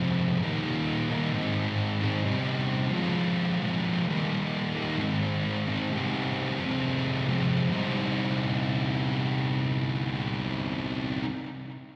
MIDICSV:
0, 0, Header, 1, 2, 480
1, 0, Start_track
1, 0, Key_signature, -3, "minor"
1, 0, Tempo, 456969
1, 440, Time_signature, 4, 2, 24, 8
1, 12560, End_track
2, 0, Start_track
2, 0, Title_t, "Distorted electric guitar"
2, 0, Program_c, 0, 30
2, 0, Note_on_c, 0, 41, 86
2, 0, Note_on_c, 0, 48, 93
2, 0, Note_on_c, 0, 53, 99
2, 0, Note_on_c, 0, 56, 98
2, 0, Note_on_c, 0, 60, 105
2, 429, Note_off_c, 0, 41, 0
2, 435, Note_off_c, 0, 48, 0
2, 437, Note_off_c, 0, 53, 0
2, 440, Note_on_c, 0, 51, 81
2, 444, Note_off_c, 0, 56, 0
2, 446, Note_on_c, 0, 55, 77
2, 447, Note_off_c, 0, 60, 0
2, 456, Note_on_c, 0, 58, 91
2, 464, Note_on_c, 0, 63, 85
2, 1140, Note_off_c, 0, 51, 0
2, 1143, Note_off_c, 0, 55, 0
2, 1148, Note_off_c, 0, 58, 0
2, 1149, Note_off_c, 0, 63, 0
2, 1162, Note_on_c, 0, 63, 74
2, 1169, Note_on_c, 0, 58, 70
2, 1179, Note_on_c, 0, 55, 63
2, 1195, Note_on_c, 0, 51, 64
2, 1381, Note_off_c, 0, 51, 0
2, 1383, Note_off_c, 0, 63, 0
2, 1386, Note_off_c, 0, 58, 0
2, 1388, Note_on_c, 0, 44, 82
2, 1391, Note_off_c, 0, 55, 0
2, 1394, Note_on_c, 0, 51, 77
2, 1405, Note_on_c, 0, 56, 85
2, 1416, Note_on_c, 0, 60, 82
2, 1427, Note_on_c, 0, 63, 88
2, 2093, Note_off_c, 0, 44, 0
2, 2096, Note_off_c, 0, 51, 0
2, 2101, Note_off_c, 0, 56, 0
2, 2106, Note_off_c, 0, 63, 0
2, 2107, Note_off_c, 0, 60, 0
2, 2118, Note_on_c, 0, 63, 70
2, 2132, Note_on_c, 0, 60, 71
2, 2136, Note_on_c, 0, 56, 64
2, 2143, Note_on_c, 0, 51, 68
2, 2159, Note_on_c, 0, 44, 66
2, 2339, Note_off_c, 0, 63, 0
2, 2345, Note_off_c, 0, 60, 0
2, 2346, Note_off_c, 0, 51, 0
2, 2348, Note_off_c, 0, 56, 0
2, 2350, Note_on_c, 0, 48, 82
2, 2359, Note_off_c, 0, 44, 0
2, 2368, Note_on_c, 0, 55, 84
2, 2375, Note_on_c, 0, 60, 80
2, 2385, Note_on_c, 0, 63, 83
2, 3052, Note_off_c, 0, 48, 0
2, 3056, Note_on_c, 0, 53, 79
2, 3062, Note_off_c, 0, 55, 0
2, 3065, Note_off_c, 0, 60, 0
2, 3071, Note_off_c, 0, 63, 0
2, 3075, Note_on_c, 0, 56, 77
2, 3086, Note_on_c, 0, 60, 78
2, 3091, Note_on_c, 0, 65, 85
2, 3766, Note_off_c, 0, 53, 0
2, 3775, Note_off_c, 0, 56, 0
2, 3780, Note_off_c, 0, 60, 0
2, 3780, Note_on_c, 0, 53, 70
2, 3783, Note_off_c, 0, 65, 0
2, 3802, Note_on_c, 0, 56, 70
2, 3812, Note_on_c, 0, 60, 72
2, 3818, Note_on_c, 0, 65, 78
2, 4248, Note_off_c, 0, 53, 0
2, 4259, Note_off_c, 0, 56, 0
2, 4264, Note_off_c, 0, 60, 0
2, 4267, Note_off_c, 0, 65, 0
2, 4273, Note_on_c, 0, 51, 77
2, 4289, Note_on_c, 0, 55, 85
2, 4300, Note_on_c, 0, 58, 86
2, 4311, Note_on_c, 0, 63, 91
2, 4974, Note_off_c, 0, 51, 0
2, 4982, Note_off_c, 0, 55, 0
2, 4986, Note_off_c, 0, 63, 0
2, 4988, Note_off_c, 0, 58, 0
2, 4999, Note_on_c, 0, 63, 73
2, 5009, Note_on_c, 0, 58, 63
2, 5012, Note_on_c, 0, 55, 64
2, 5025, Note_on_c, 0, 51, 52
2, 5218, Note_off_c, 0, 63, 0
2, 5223, Note_off_c, 0, 58, 0
2, 5224, Note_off_c, 0, 55, 0
2, 5226, Note_off_c, 0, 51, 0
2, 5229, Note_on_c, 0, 44, 75
2, 5238, Note_on_c, 0, 51, 77
2, 5249, Note_on_c, 0, 56, 86
2, 5257, Note_on_c, 0, 63, 86
2, 5258, Note_on_c, 0, 60, 88
2, 5933, Note_off_c, 0, 44, 0
2, 5938, Note_off_c, 0, 51, 0
2, 5943, Note_off_c, 0, 56, 0
2, 5947, Note_off_c, 0, 63, 0
2, 5960, Note_off_c, 0, 60, 0
2, 5961, Note_on_c, 0, 63, 66
2, 5964, Note_on_c, 0, 60, 62
2, 5975, Note_on_c, 0, 56, 65
2, 5979, Note_on_c, 0, 51, 64
2, 5990, Note_on_c, 0, 44, 57
2, 6179, Note_off_c, 0, 63, 0
2, 6186, Note_off_c, 0, 56, 0
2, 6188, Note_off_c, 0, 51, 0
2, 6193, Note_off_c, 0, 44, 0
2, 6204, Note_on_c, 0, 48, 76
2, 6224, Note_on_c, 0, 55, 79
2, 6227, Note_off_c, 0, 60, 0
2, 6231, Note_on_c, 0, 60, 80
2, 6241, Note_on_c, 0, 63, 83
2, 6901, Note_off_c, 0, 48, 0
2, 6905, Note_on_c, 0, 41, 72
2, 6912, Note_off_c, 0, 55, 0
2, 6915, Note_off_c, 0, 60, 0
2, 6920, Note_off_c, 0, 63, 0
2, 6923, Note_on_c, 0, 48, 76
2, 6930, Note_on_c, 0, 53, 71
2, 6938, Note_on_c, 0, 56, 72
2, 6947, Note_on_c, 0, 60, 85
2, 7613, Note_off_c, 0, 41, 0
2, 7622, Note_off_c, 0, 48, 0
2, 7626, Note_off_c, 0, 53, 0
2, 7630, Note_off_c, 0, 56, 0
2, 7631, Note_on_c, 0, 41, 63
2, 7634, Note_off_c, 0, 60, 0
2, 7637, Note_on_c, 0, 48, 62
2, 7645, Note_on_c, 0, 53, 67
2, 7656, Note_on_c, 0, 56, 72
2, 7667, Note_on_c, 0, 60, 70
2, 8083, Note_off_c, 0, 48, 0
2, 8095, Note_on_c, 0, 48, 73
2, 8097, Note_off_c, 0, 41, 0
2, 8103, Note_off_c, 0, 53, 0
2, 8107, Note_on_c, 0, 55, 83
2, 8109, Note_off_c, 0, 56, 0
2, 8109, Note_off_c, 0, 60, 0
2, 8122, Note_on_c, 0, 60, 86
2, 8141, Note_on_c, 0, 63, 83
2, 11772, Note_off_c, 0, 48, 0
2, 11783, Note_off_c, 0, 55, 0
2, 11798, Note_off_c, 0, 60, 0
2, 11817, Note_off_c, 0, 63, 0
2, 12560, End_track
0, 0, End_of_file